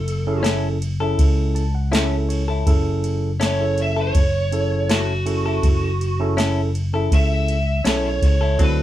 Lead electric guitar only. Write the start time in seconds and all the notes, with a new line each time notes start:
Already playing: A4
3.45 C#5
3.82 E5
4.01 C#5
4.92 F#4
7.14 E5
7.88 C#5
8.07 C#5
8.26 C#5
8.64 B4